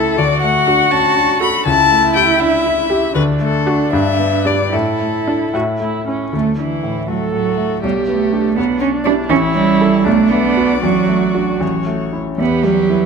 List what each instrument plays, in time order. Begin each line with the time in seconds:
Already playing: grand piano C#2 A3 E4 A4, viola E4, cello E4, violin A4
0.17 grand piano D2, cello F#4, violin D5
0.42 grand piano A3, violin F#5
0.67 grand piano D4, viola F#4
0.91 grand piano C#4, violin A5
1.16 grand piano D4
1.40 viola F#4, grand piano A4, violin B5
1.65 grand piano C#2, cello E4, violin A5
1.91 grand piano A3
2.15 grand piano E4, viola G4, violin G5
2.40 grand piano D4, violin E5
2.66 grand piano E4
2.90 viola G4, grand piano G4
3.15 grand piano D2, cello D4, violin B4
3.40 grand piano A3, violin A4
3.66 grand piano D4 F#4, viola F#4
3.92 grand piano G2, violin E5
4.19 grand piano B3
4.45 grand piano D4 G4, viola D4, violin D5
4.72 grand piano A2, cello E4, violin A4
5.00 grand piano A3
5.27 viola D4, grand piano D4 E4
5.54 grand piano A2, viola F#4
5.80 grand piano A3, viola E4
6.07 grand piano C#4 E4, viola C#4
6.33 grand piano D2, violin A3, cello A3
6.58 cello E3, grand piano D4, violin E4
6.83 grand piano A2
7.08 cello F#3, grand piano A3, violin F#4, viola A4
7.33 grand piano A2, cello F#3, violin F#4
7.57 grand piano A3
7.83 grand piano B1, cello G3, violin G3, viola G4
8.08 violin A3, cello A3, grand piano B3
8.33 grand piano D4 G4
8.56 grand piano B1, cello B3, violin B3, viola D4
8.80 violin C#4, cello C#4, grand piano D4
9.04 violin D4, cello D4, grand piano E4 G4
9.29 grand piano A1, cello C#4, viola E4, violin C#5
9.54 cello G3, grand piano C#4
9.80 grand piano E4 A4
10.04 grand piano B1, cello A3, viola D4, violin D5
10.30 grand piano A3, cello B3
10.57 grand piano D4 F#4
10.82 grand piano A1, cello F#3, viola F#4
11.08 grand piano A3
11.34 grand piano D4 F#4
11.60 grand piano A1, violin C#5
11.86 grand piano A3
12.12 grand piano C#4 E4
12.38 grand piano E2, cello B3, viola G4, violin B4
12.64 cello F#3, grand piano G3
12.90 grand piano B3 E4